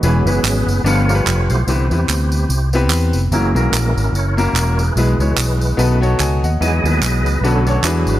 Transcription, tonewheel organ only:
0.04 F#3 G#3 B3 C#4 G#4
0.27 G#4 B4
0.86 F3 A3 B3 F4 C#5
1.50 E4 G4 C5
1.68 D3 E3 B3
3.32 E3 G#3 A#3 C#4 E4 G#4
3.57 C#4 E4 A#4
4.15 E4 A#4 C#5
4.80 E4 G#4 B4
4.97 E3 G#3 B3
5.80 D#3 A3 C#4
6.61 F#3 G#3 B3 G#4 D#5
6.86 G#4 B4
7.44 D3 A3 C#4 F#4 A4 C#5
7.84 F#3 G#3 D4
8.09 E4 F#4 B4

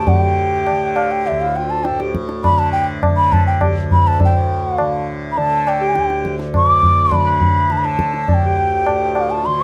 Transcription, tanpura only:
Already playing: D2 A2 D3
0.12 D3
0.70 D3
1.30 D2
1.90 A2
2.49 D3
3.08 D3
3.65 D2
4.21 A2
4.79 D3
5.38 D3
5.97 D2
6.55 A2
7.13 D3
7.72 D3
8.30 D2
8.88 A2
9.47 D3

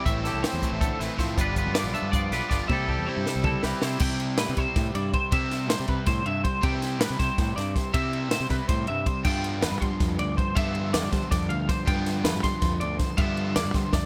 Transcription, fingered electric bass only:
0.06 A1
0.34 C2
0.53 E2
0.72 A1
1.00 A1
1.19 A2
1.38 G1
1.66 G2
1.84 B1
2.02 G2
2.31 B1
2.51 G1
2.70 C2
2.98 E2
3.17 G2
3.36 C2
3.64 C2
3.82 C3
4.01 C3
4.40 A2
4.49 C3
4.58 C3
4.76 A2
4.95 G2
5.32 C3
5.70 A2
5.80 C3
5.89 C3
6.07 A2
6.26 G2
6.64 C3
7.02 A2
7.10 C3
7.20 C3
7.39 A2
7.57 G2
7.94 C3
8.32 A2
8.40 C3
8.50 C3
8.69 A2
8.90 G2
9.26 G2
9.63 F2
9.72 G2
9.81 G3
10.01 F2
10.19 D2
10.56 G2
10.94 F2
11.03 G2
11.12 G3
11.32 F2
11.49 D2
11.88 G2
12.24 F2
12.34 G2
12.44 G3
12.63 F2
12.82 D2
13.19 G2
13.56 F2
13.65 G2
13.75 G3
13.93 F2

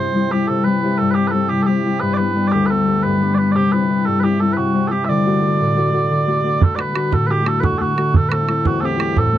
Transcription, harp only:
Already playing: G3 A3 C4 D4 E4
0.00 C3
0.15 G3 C4 E4
0.32 G3 C4 E4
0.49 C3
0.66 G3 C4 E4
0.83 G3 C4 E4
1.01 G2
1.17 G3 C4 E4
1.34 G3 C4 E4
1.51 C3
1.68 G3 C4 E4
1.85 G3 C4 E4
2.02 G2
2.18 G3 B3 D4
2.36 G3 B3 D4
2.54 D2
2.70 G3 B3 D4
2.88 G3 B3 D4
3.05 G2
3.21 G3 B3 D4
3.38 G3 B3 D4
3.56 C3
3.72 G3 C4 E4
3.89 G3 C4 E4
4.07 G2
4.24 G3 C4 E4
4.41 G3 C4 E4
4.58 C3
4.74 G3 C4 E4
4.91 G3 C4 E4
5.09 D3
5.25 A3 D4 F#4
5.40 A3 D4
5.45 F#4
5.60 A2
5.77 A3 D4 F#4
5.93 A3 D4 F#4
6.10 D3
6.27 A3 D4 F#4
6.44 A3 D4 F#4
6.61 D3
6.77 A3 D4 F#4
6.94 A3 D4 F#4
7.12 A2
7.29 A3 D4 F#4
7.46 A3 D4 F#4
7.63 D3
7.80 A3 D4 F#4
7.97 A3 D4 F#4
8.16 A2
8.31 A3 C4 E4
8.48 A3 C4 E4
8.66 E2
8.82 A3 C4 E4
8.98 A3 C4 E4
9.17 A2
9.32 A3 C4 E4

